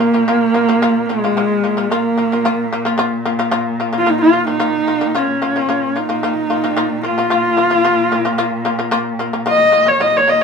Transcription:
Already playing: A#2 A#3
0.00 A#3 F4
0.13 A#3 F4
0.28 A#3 F4
0.54 A#3 F4
0.69 A#3 F4
0.82 A#3 F4
1.06 G#3 A#3
1.10 F4
1.24 A#3 F4
1.37 A#2 A#3 F4
1.64 A#3 F4
1.77 A#3 F4
1.90 A#3 F4
2.18 A#3 F4
2.32 A#3 F4
2.45 A#3 F4
2.73 A#3 F4
2.85 A#3 F4
2.98 A#3 F4
3.25 A#3 F4
3.39 A#3 F4
3.51 A#3 F4
3.80 A#3 F4
3.93 A#3 F4
3.98 F4
4.06 A#3 D#4 F4
4.21 F4
4.33 A#3 F4
4.47 A#3 D#4 F4
4.60 A#3 F4
4.87 A#3 F4
5.01 A#3 F4
5.15 A#3 C#4 F4
5.42 A#3 F4
5.56 A#3 F4
5.69 A#2 A#3 F4
5.96 A#3 D#4 F4
6.09 A#3 F4
6.23 A#3 F4
6.50 A#3 F4
6.64 A#3 F4
6.77 A#3 F4
7.03 A#3 F4
7.18 A#3 F4
7.30 A#3 F4
7.57 A#3 F4
7.70 A#3 F4
7.84 A#3 F4
8.12 A#3 F4
8.25 A#3 F4
8.38 A#3 F4
8.65 A#3 F4
8.79 A#3 F4
8.91 A#3 F4
9.19 A#3 F4
9.33 A#3 F4
9.46 A#3 F4 D#5
9.72 A#3 F4
9.86 A#3 F4 C#5
10.00 A#2 A#3 F4 D#5
10.16 C#5
10.28 A#3 F4 D#5

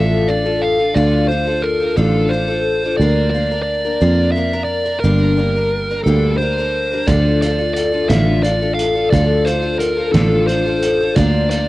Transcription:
Already playing: A1 D3 F3 D4 F4 A4 E5
0.28 F3 D4 F4 A4 D5
0.46 D4 F4 A4
0.62 F5
0.79 D4 F4 A4
0.94 D2 D3 F3 D4 F4 A4 D5
1.28 F3 D4 F4 C5
1.32 A4
1.47 D4 F4 A4
1.62 A#4
1.80 D4 F4 A4
1.97 A1 D3 F3 D4 F4 A4
2.29 F3 C5
2.33 D4 F4 A4
2.48 D4 F4 A4
2.84 D4 F4 A4
2.97 D2 D3 D5
3.01 F3 A#3 D4 A#4
3.30 D5
3.34 F3 A#3 D4 A#4
3.51 A#3 D4 A#4
3.63 D5
3.85 A#3 D4 A#4
4.01 F2 D3 F3 A#3 D4 A#4
4.32 E5
4.36 F3 A#3 D4 A#4
4.53 A#3 D4 A#4
4.64 D5
4.86 A#3 D4 A#4
5.00 G1 G2 A#4
5.04 D3 G3 A#3 D4 A#4
5.37 G3 A#3 D4 A#4
5.56 G3 A#3 D4 A#4
5.91 G3 A#3 D4 A#4
6.04 D2 G2 D3 G3 A4
6.08 A#3 D4
6.38 G3 C5
6.42 A#3 D4 A#4
6.58 G3 A#3 D4 A#4
6.92 G3 A#3 D4 A#4
7.07 D2 D3 F3 D4 F4 A4 D5, kick, closed hi-hat
7.42 F3 D4 F4 A4 D5, closed hi-hat
7.59 D4 F4 A4
7.74 D5, closed hi-hat
7.92 D4 F4 A4
8.09 A1 D3 F3 D4 F4 A4 E5, snare, closed hi-hat
8.43 F3 D4 F4 A4 D5, closed hi-hat
8.62 D4 F4 A4
8.74 F5
8.79 closed hi-hat
8.95 D4 F4 A4
9.10 D2 D3 F3 D4 F4 A4 D5, kick, closed hi-hat
9.45 F3 D4 F4 A4 C5, closed hi-hat
9.62 D4 F4 A4
9.79 A#4, closed hi-hat
9.97 D4 F4 A4
10.12 A1 D3 F3 D4 F4 A4, snare, closed hi-hat
10.47 F3 D4 F4 A4 C5, closed hi-hat
10.66 D4 F4 A4
10.83 closed hi-hat
11.01 D4 F4 A4
11.15 D2 D3 F3 A#3 D4 A#4 D5, kick, closed hi-hat
11.50 F3 A#3 D4 A#4 D5, closed hi-hat

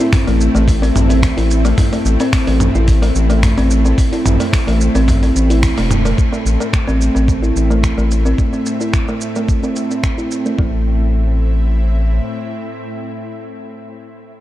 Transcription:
Already playing: A2 A3 C4 E4 E5
0.00 E4
0.13 finger snap, kick, mid tom, open hi-hat, shaker
0.27 A1 A3, open hi-hat, shaker
0.41 shaker
0.55 A1 A3, shaker
0.68 kick, open hi-hat, shaker
0.82 C4, open hi-hat, shaker
0.95 A1, mid tom, shaker
1.09 C4, open hi-hat, shaker
1.23 finger snap, kick, open hi-hat, shaker
1.37 A1 E4, open hi-hat, shaker
1.51 shaker
1.65 A3, open hi-hat, shaker
1.78 kick, mid tom, open hi-hat, shaker
1.93 A3, open hi-hat, shaker
2.05 A1, shaker
2.20 C4, open hi-hat, shaker
2.33 finger snap, kick, open hi-hat, shaker
2.47 A1 C4, open hi-hat, shaker
2.60 mid tom, shaker
2.75 A1 E4, shaker
2.88 kick, open hi-hat, shaker
3.02 A3, open hi-hat, shaker
3.15 A1, shaker
3.30 A3, open hi-hat, shaker
3.43 finger snap, kick, mid tom, open hi-hat, shaker
3.57 A1 C4, open hi-hat, shaker
3.71 shaker
3.85 C4, shaker
3.98 kick, open hi-hat, shaker
4.12 E4, open hi-hat, shaker
4.26 A1, mid tom, shaker
4.40 A3, open hi-hat, shaker
4.53 finger snap, kick, open hi-hat, shaker
4.67 A1 A3, open hi-hat, shaker
4.81 shaker
4.95 A1 C4, open hi-hat, shaker
5.08 kick, mid tom, open hi-hat, shaker
5.23 C4, open hi-hat, shaker
5.36 A1, shaker
5.50 E4, open hi-hat, shaker
5.63 finger snap, kick, open hi-hat, shaker
5.78 E1 A3, open hi-hat, shaker
5.91 mid tom, shaker
6.05 A3, open hi-hat, shaker
6.18 kick, shaker
6.33 A3, shaker
6.45 A1, shaker
6.60 A3, shaker
6.73 finger snap, kick, shaker
6.88 A1 C4, shaker
7.01 E5, shaker
7.15 A1 C4, shaker
7.28 kick, shaker
7.42 E4, shaker
7.56 A1, shaker
7.70 A3, shaker
7.83 finger snap, kick, shaker
7.98 A1 A3, shaker
8.11 shaker
8.26 C4, shaker
8.38 kick, shaker
8.53 C4, shaker
8.66 shaker
8.81 E4, shaker
8.93 finger snap, kick, shaker
9.08 A3, shaker
9.21 shaker
9.36 A3, shaker
9.49 kick, shaker
9.63 C4, shaker
9.76 shaker
9.91 C4, shaker
10.04 finger snap, kick, shaker
10.18 E4, shaker
10.31 shaker
10.46 A3, shaker
10.59 A1 A2 A3, kick
10.68 A3
10.77 C4
10.84 E4
10.92 E5

